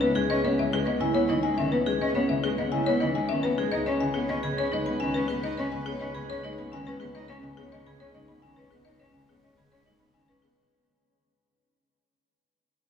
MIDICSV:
0, 0, Header, 1, 6, 480
1, 0, Start_track
1, 0, Tempo, 571429
1, 244, Time_signature, 3, 2, 24, 8
1, 10829, End_track
2, 0, Start_track
2, 0, Title_t, "Marimba"
2, 0, Program_c, 0, 12
2, 6, Note_on_c, 0, 71, 90
2, 131, Note_on_c, 0, 68, 77
2, 161, Note_off_c, 0, 71, 0
2, 252, Note_on_c, 0, 75, 100
2, 283, Note_off_c, 0, 68, 0
2, 376, Note_on_c, 0, 73, 84
2, 403, Note_off_c, 0, 75, 0
2, 498, Note_on_c, 0, 76, 79
2, 524, Note_off_c, 0, 73, 0
2, 616, Note_on_c, 0, 68, 102
2, 645, Note_off_c, 0, 76, 0
2, 729, Note_on_c, 0, 75, 78
2, 765, Note_off_c, 0, 68, 0
2, 847, Note_on_c, 0, 80, 89
2, 882, Note_off_c, 0, 75, 0
2, 962, Note_on_c, 0, 73, 104
2, 1001, Note_off_c, 0, 80, 0
2, 1089, Note_on_c, 0, 75, 80
2, 1120, Note_off_c, 0, 73, 0
2, 1201, Note_on_c, 0, 80, 92
2, 1242, Note_off_c, 0, 75, 0
2, 1325, Note_on_c, 0, 76, 93
2, 1359, Note_off_c, 0, 80, 0
2, 1444, Note_on_c, 0, 71, 91
2, 1481, Note_off_c, 0, 76, 0
2, 1567, Note_on_c, 0, 68, 84
2, 1601, Note_off_c, 0, 71, 0
2, 1692, Note_on_c, 0, 75, 107
2, 1721, Note_off_c, 0, 68, 0
2, 1812, Note_on_c, 0, 73, 81
2, 1843, Note_off_c, 0, 75, 0
2, 1924, Note_on_c, 0, 76, 84
2, 1963, Note_off_c, 0, 73, 0
2, 2046, Note_on_c, 0, 68, 113
2, 2080, Note_off_c, 0, 76, 0
2, 2170, Note_on_c, 0, 75, 82
2, 2201, Note_off_c, 0, 68, 0
2, 2283, Note_on_c, 0, 80, 98
2, 2322, Note_off_c, 0, 75, 0
2, 2406, Note_on_c, 0, 73, 124
2, 2440, Note_off_c, 0, 80, 0
2, 2523, Note_on_c, 0, 75, 95
2, 2561, Note_off_c, 0, 73, 0
2, 2647, Note_on_c, 0, 80, 98
2, 2680, Note_off_c, 0, 75, 0
2, 2761, Note_on_c, 0, 76, 109
2, 2802, Note_off_c, 0, 80, 0
2, 2882, Note_on_c, 0, 71, 96
2, 2919, Note_off_c, 0, 76, 0
2, 3008, Note_on_c, 0, 68, 94
2, 3040, Note_off_c, 0, 71, 0
2, 3121, Note_on_c, 0, 75, 119
2, 3162, Note_off_c, 0, 68, 0
2, 3244, Note_on_c, 0, 73, 91
2, 3279, Note_off_c, 0, 75, 0
2, 3364, Note_on_c, 0, 80, 93
2, 3401, Note_off_c, 0, 73, 0
2, 3477, Note_on_c, 0, 68, 99
2, 3521, Note_off_c, 0, 80, 0
2, 3606, Note_on_c, 0, 75, 80
2, 3638, Note_off_c, 0, 68, 0
2, 3725, Note_on_c, 0, 83, 94
2, 3761, Note_off_c, 0, 75, 0
2, 3851, Note_on_c, 0, 73, 119
2, 3881, Note_off_c, 0, 83, 0
2, 3976, Note_on_c, 0, 75, 100
2, 4003, Note_off_c, 0, 73, 0
2, 4083, Note_on_c, 0, 83, 102
2, 4125, Note_off_c, 0, 75, 0
2, 4199, Note_on_c, 0, 80, 107
2, 4240, Note_off_c, 0, 83, 0
2, 4320, Note_on_c, 0, 71, 94
2, 4359, Note_off_c, 0, 80, 0
2, 4435, Note_on_c, 0, 68, 89
2, 4479, Note_off_c, 0, 71, 0
2, 4565, Note_on_c, 0, 75, 114
2, 4597, Note_off_c, 0, 68, 0
2, 4683, Note_on_c, 0, 73, 94
2, 4721, Note_off_c, 0, 75, 0
2, 4804, Note_on_c, 0, 80, 87
2, 4840, Note_off_c, 0, 73, 0
2, 4922, Note_on_c, 0, 68, 114
2, 4960, Note_off_c, 0, 80, 0
2, 5037, Note_on_c, 0, 75, 82
2, 5080, Note_off_c, 0, 68, 0
2, 5164, Note_on_c, 0, 83, 99
2, 5198, Note_off_c, 0, 75, 0
2, 5289, Note_on_c, 0, 73, 120
2, 5320, Note_off_c, 0, 83, 0
2, 5413, Note_on_c, 0, 75, 87
2, 5442, Note_off_c, 0, 73, 0
2, 5530, Note_on_c, 0, 83, 91
2, 5564, Note_off_c, 0, 75, 0
2, 5654, Note_on_c, 0, 80, 99
2, 5683, Note_off_c, 0, 83, 0
2, 5769, Note_on_c, 0, 71, 99
2, 5804, Note_off_c, 0, 80, 0
2, 5879, Note_on_c, 0, 68, 88
2, 5922, Note_off_c, 0, 71, 0
2, 6005, Note_on_c, 0, 75, 102
2, 6039, Note_off_c, 0, 68, 0
2, 6118, Note_on_c, 0, 73, 99
2, 6161, Note_off_c, 0, 75, 0
2, 6244, Note_on_c, 0, 80, 80
2, 6278, Note_off_c, 0, 73, 0
2, 6360, Note_on_c, 0, 68, 104
2, 6401, Note_off_c, 0, 80, 0
2, 6486, Note_on_c, 0, 75, 87
2, 6519, Note_off_c, 0, 68, 0
2, 6605, Note_on_c, 0, 83, 86
2, 6641, Note_off_c, 0, 75, 0
2, 6722, Note_on_c, 0, 73, 109
2, 6761, Note_off_c, 0, 83, 0
2, 6841, Note_on_c, 0, 75, 85
2, 6880, Note_off_c, 0, 73, 0
2, 6956, Note_on_c, 0, 83, 86
2, 6999, Note_off_c, 0, 75, 0
2, 7075, Note_on_c, 0, 80, 92
2, 7118, Note_off_c, 0, 83, 0
2, 7193, Note_on_c, 0, 71, 87
2, 7237, Note_off_c, 0, 80, 0
2, 7313, Note_on_c, 0, 68, 77
2, 7357, Note_off_c, 0, 71, 0
2, 7432, Note_on_c, 0, 75, 108
2, 7477, Note_off_c, 0, 68, 0
2, 7556, Note_on_c, 0, 73, 89
2, 7596, Note_off_c, 0, 75, 0
2, 7677, Note_on_c, 0, 80, 73
2, 7718, Note_off_c, 0, 73, 0
2, 7805, Note_on_c, 0, 68, 90
2, 7838, Note_off_c, 0, 80, 0
2, 7926, Note_on_c, 0, 75, 70
2, 7961, Note_off_c, 0, 68, 0
2, 8042, Note_on_c, 0, 83, 86
2, 8081, Note_off_c, 0, 75, 0
2, 8164, Note_on_c, 0, 73, 106
2, 8200, Note_off_c, 0, 83, 0
2, 8278, Note_on_c, 0, 75, 80
2, 8320, Note_off_c, 0, 73, 0
2, 8397, Note_on_c, 0, 83, 79
2, 8438, Note_off_c, 0, 75, 0
2, 8517, Note_on_c, 0, 80, 96
2, 8558, Note_off_c, 0, 83, 0
2, 8637, Note_on_c, 0, 71, 79
2, 8678, Note_off_c, 0, 80, 0
2, 8754, Note_on_c, 0, 68, 79
2, 8798, Note_off_c, 0, 71, 0
2, 8917, Note_off_c, 0, 68, 0
2, 10829, End_track
3, 0, Start_track
3, 0, Title_t, "Soprano saxophone"
3, 0, Program_c, 1, 64
3, 0, Note_on_c, 1, 71, 72
3, 92, Note_off_c, 1, 71, 0
3, 3124, Note_on_c, 1, 71, 92
3, 5851, Note_off_c, 1, 71, 0
3, 10829, End_track
4, 0, Start_track
4, 0, Title_t, "Vibraphone"
4, 0, Program_c, 2, 11
4, 128, Note_on_c, 2, 68, 112
4, 282, Note_off_c, 2, 68, 0
4, 372, Note_on_c, 2, 61, 85
4, 523, Note_off_c, 2, 61, 0
4, 608, Note_on_c, 2, 71, 80
4, 762, Note_off_c, 2, 71, 0
4, 844, Note_on_c, 2, 64, 110
4, 1001, Note_off_c, 2, 64, 0
4, 1084, Note_on_c, 2, 63, 87
4, 1240, Note_off_c, 2, 63, 0
4, 1326, Note_on_c, 2, 61, 86
4, 1481, Note_off_c, 2, 61, 0
4, 1565, Note_on_c, 2, 68, 107
4, 1721, Note_off_c, 2, 68, 0
4, 1806, Note_on_c, 2, 61, 88
4, 1961, Note_off_c, 2, 61, 0
4, 2047, Note_on_c, 2, 71, 84
4, 2201, Note_off_c, 2, 71, 0
4, 2286, Note_on_c, 2, 64, 104
4, 2441, Note_off_c, 2, 64, 0
4, 2526, Note_on_c, 2, 63, 84
4, 2681, Note_off_c, 2, 63, 0
4, 2766, Note_on_c, 2, 61, 102
4, 2921, Note_off_c, 2, 61, 0
4, 3008, Note_on_c, 2, 68, 119
4, 3162, Note_off_c, 2, 68, 0
4, 3246, Note_on_c, 2, 61, 89
4, 3401, Note_off_c, 2, 61, 0
4, 3482, Note_on_c, 2, 73, 84
4, 3640, Note_off_c, 2, 73, 0
4, 3723, Note_on_c, 2, 68, 122
4, 3880, Note_off_c, 2, 68, 0
4, 3963, Note_on_c, 2, 63, 90
4, 4120, Note_off_c, 2, 63, 0
4, 4203, Note_on_c, 2, 61, 105
4, 4360, Note_off_c, 2, 61, 0
4, 4446, Note_on_c, 2, 71, 114
4, 4601, Note_off_c, 2, 71, 0
4, 4686, Note_on_c, 2, 61, 89
4, 4841, Note_off_c, 2, 61, 0
4, 4924, Note_on_c, 2, 73, 91
4, 5080, Note_off_c, 2, 73, 0
4, 5162, Note_on_c, 2, 68, 113
4, 5320, Note_off_c, 2, 68, 0
4, 5406, Note_on_c, 2, 63, 94
4, 5561, Note_off_c, 2, 63, 0
4, 5646, Note_on_c, 2, 61, 99
4, 5801, Note_off_c, 2, 61, 0
4, 5887, Note_on_c, 2, 71, 108
4, 6042, Note_off_c, 2, 71, 0
4, 6124, Note_on_c, 2, 61, 89
4, 6280, Note_off_c, 2, 61, 0
4, 6362, Note_on_c, 2, 73, 89
4, 6520, Note_off_c, 2, 73, 0
4, 6608, Note_on_c, 2, 68, 107
4, 6762, Note_off_c, 2, 68, 0
4, 6848, Note_on_c, 2, 63, 87
4, 7002, Note_off_c, 2, 63, 0
4, 7083, Note_on_c, 2, 61, 94
4, 7240, Note_off_c, 2, 61, 0
4, 7322, Note_on_c, 2, 71, 104
4, 7480, Note_off_c, 2, 71, 0
4, 7560, Note_on_c, 2, 61, 84
4, 7719, Note_off_c, 2, 61, 0
4, 7804, Note_on_c, 2, 73, 76
4, 7960, Note_off_c, 2, 73, 0
4, 8045, Note_on_c, 2, 68, 101
4, 8201, Note_off_c, 2, 68, 0
4, 8286, Note_on_c, 2, 63, 80
4, 8441, Note_off_c, 2, 63, 0
4, 8524, Note_on_c, 2, 61, 79
4, 8680, Note_off_c, 2, 61, 0
4, 8762, Note_on_c, 2, 71, 101
4, 8920, Note_off_c, 2, 71, 0
4, 10829, End_track
5, 0, Start_track
5, 0, Title_t, "Cello"
5, 0, Program_c, 3, 42
5, 12, Note_on_c, 3, 59, 81
5, 99, Note_off_c, 3, 59, 0
5, 128, Note_on_c, 3, 56, 84
5, 216, Note_off_c, 3, 56, 0
5, 246, Note_on_c, 3, 61, 106
5, 335, Note_off_c, 3, 61, 0
5, 368, Note_on_c, 3, 59, 74
5, 457, Note_off_c, 3, 59, 0
5, 488, Note_on_c, 3, 49, 86
5, 576, Note_off_c, 3, 49, 0
5, 600, Note_on_c, 3, 56, 95
5, 692, Note_off_c, 3, 56, 0
5, 717, Note_on_c, 3, 59, 89
5, 810, Note_off_c, 3, 59, 0
5, 837, Note_on_c, 3, 49, 96
5, 930, Note_off_c, 3, 49, 0
5, 952, Note_on_c, 3, 59, 101
5, 1047, Note_off_c, 3, 59, 0
5, 1075, Note_on_c, 3, 52, 88
5, 1168, Note_off_c, 3, 52, 0
5, 1203, Note_on_c, 3, 56, 94
5, 1294, Note_off_c, 3, 56, 0
5, 1323, Note_on_c, 3, 51, 108
5, 1414, Note_off_c, 3, 51, 0
5, 1447, Note_on_c, 3, 59, 81
5, 1536, Note_off_c, 3, 59, 0
5, 1567, Note_on_c, 3, 56, 79
5, 1656, Note_off_c, 3, 56, 0
5, 1685, Note_on_c, 3, 61, 113
5, 1775, Note_off_c, 3, 61, 0
5, 1804, Note_on_c, 3, 59, 93
5, 1894, Note_off_c, 3, 59, 0
5, 1926, Note_on_c, 3, 49, 85
5, 2015, Note_off_c, 3, 49, 0
5, 2046, Note_on_c, 3, 56, 103
5, 2136, Note_off_c, 3, 56, 0
5, 2169, Note_on_c, 3, 59, 88
5, 2257, Note_off_c, 3, 59, 0
5, 2290, Note_on_c, 3, 49, 104
5, 2378, Note_off_c, 3, 49, 0
5, 2411, Note_on_c, 3, 59, 106
5, 2499, Note_off_c, 3, 59, 0
5, 2534, Note_on_c, 3, 52, 83
5, 2620, Note_off_c, 3, 52, 0
5, 2649, Note_on_c, 3, 56, 89
5, 2738, Note_off_c, 3, 56, 0
5, 2772, Note_on_c, 3, 51, 104
5, 2860, Note_off_c, 3, 51, 0
5, 2887, Note_on_c, 3, 59, 89
5, 2976, Note_off_c, 3, 59, 0
5, 3009, Note_on_c, 3, 56, 95
5, 3097, Note_off_c, 3, 56, 0
5, 3129, Note_on_c, 3, 63, 102
5, 3218, Note_off_c, 3, 63, 0
5, 3248, Note_on_c, 3, 61, 95
5, 3337, Note_off_c, 3, 61, 0
5, 3368, Note_on_c, 3, 49, 94
5, 3457, Note_off_c, 3, 49, 0
5, 3482, Note_on_c, 3, 59, 111
5, 3573, Note_off_c, 3, 59, 0
5, 3598, Note_on_c, 3, 61, 103
5, 3690, Note_off_c, 3, 61, 0
5, 3720, Note_on_c, 3, 49, 92
5, 3812, Note_off_c, 3, 49, 0
5, 3840, Note_on_c, 3, 61, 110
5, 3931, Note_off_c, 3, 61, 0
5, 3962, Note_on_c, 3, 56, 83
5, 4053, Note_off_c, 3, 56, 0
5, 4087, Note_on_c, 3, 59, 90
5, 4176, Note_off_c, 3, 59, 0
5, 4213, Note_on_c, 3, 51, 109
5, 4300, Note_off_c, 3, 51, 0
5, 4331, Note_on_c, 3, 61, 92
5, 4419, Note_off_c, 3, 61, 0
5, 4450, Note_on_c, 3, 59, 87
5, 4538, Note_off_c, 3, 59, 0
5, 4565, Note_on_c, 3, 63, 117
5, 4655, Note_off_c, 3, 63, 0
5, 4692, Note_on_c, 3, 61, 92
5, 4779, Note_off_c, 3, 61, 0
5, 4811, Note_on_c, 3, 49, 84
5, 4899, Note_off_c, 3, 49, 0
5, 4925, Note_on_c, 3, 59, 99
5, 5015, Note_off_c, 3, 59, 0
5, 5045, Note_on_c, 3, 61, 100
5, 5135, Note_off_c, 3, 61, 0
5, 5166, Note_on_c, 3, 49, 97
5, 5255, Note_off_c, 3, 49, 0
5, 5288, Note_on_c, 3, 61, 105
5, 5377, Note_off_c, 3, 61, 0
5, 5408, Note_on_c, 3, 56, 84
5, 5497, Note_off_c, 3, 56, 0
5, 5524, Note_on_c, 3, 59, 97
5, 5614, Note_off_c, 3, 59, 0
5, 5640, Note_on_c, 3, 51, 108
5, 5732, Note_off_c, 3, 51, 0
5, 5768, Note_on_c, 3, 61, 87
5, 5857, Note_off_c, 3, 61, 0
5, 5885, Note_on_c, 3, 59, 90
5, 5975, Note_off_c, 3, 59, 0
5, 6007, Note_on_c, 3, 63, 110
5, 6096, Note_off_c, 3, 63, 0
5, 6123, Note_on_c, 3, 61, 92
5, 6214, Note_off_c, 3, 61, 0
5, 6239, Note_on_c, 3, 49, 81
5, 6331, Note_off_c, 3, 49, 0
5, 6359, Note_on_c, 3, 59, 96
5, 6451, Note_off_c, 3, 59, 0
5, 6482, Note_on_c, 3, 61, 90
5, 6573, Note_off_c, 3, 61, 0
5, 6606, Note_on_c, 3, 49, 95
5, 6696, Note_off_c, 3, 49, 0
5, 6722, Note_on_c, 3, 61, 97
5, 6813, Note_off_c, 3, 61, 0
5, 6842, Note_on_c, 3, 56, 81
5, 6933, Note_off_c, 3, 56, 0
5, 6965, Note_on_c, 3, 59, 77
5, 7055, Note_off_c, 3, 59, 0
5, 7081, Note_on_c, 3, 51, 99
5, 7173, Note_off_c, 3, 51, 0
5, 7204, Note_on_c, 3, 61, 83
5, 7294, Note_off_c, 3, 61, 0
5, 7321, Note_on_c, 3, 59, 78
5, 7413, Note_off_c, 3, 59, 0
5, 7451, Note_on_c, 3, 63, 97
5, 7539, Note_off_c, 3, 63, 0
5, 7572, Note_on_c, 3, 61, 83
5, 7659, Note_off_c, 3, 61, 0
5, 7685, Note_on_c, 3, 49, 79
5, 7775, Note_off_c, 3, 49, 0
5, 7807, Note_on_c, 3, 59, 92
5, 7896, Note_off_c, 3, 59, 0
5, 7927, Note_on_c, 3, 61, 86
5, 8016, Note_off_c, 3, 61, 0
5, 8048, Note_on_c, 3, 49, 83
5, 8137, Note_off_c, 3, 49, 0
5, 8165, Note_on_c, 3, 61, 95
5, 8255, Note_off_c, 3, 61, 0
5, 8281, Note_on_c, 3, 56, 71
5, 8373, Note_off_c, 3, 56, 0
5, 8402, Note_on_c, 3, 59, 77
5, 8493, Note_off_c, 3, 59, 0
5, 8520, Note_on_c, 3, 51, 95
5, 8612, Note_off_c, 3, 51, 0
5, 8641, Note_on_c, 3, 61, 82
5, 8732, Note_off_c, 3, 61, 0
5, 8762, Note_on_c, 3, 59, 83
5, 8853, Note_off_c, 3, 59, 0
5, 10829, End_track
6, 0, Start_track
6, 0, Title_t, "Double bass"
6, 0, Program_c, 4, 43
6, 0, Note_on_c, 4, 37, 71
6, 2992, Note_off_c, 4, 37, 0
6, 3121, Note_on_c, 4, 37, 91
6, 8753, Note_off_c, 4, 37, 0
6, 10829, End_track
0, 0, End_of_file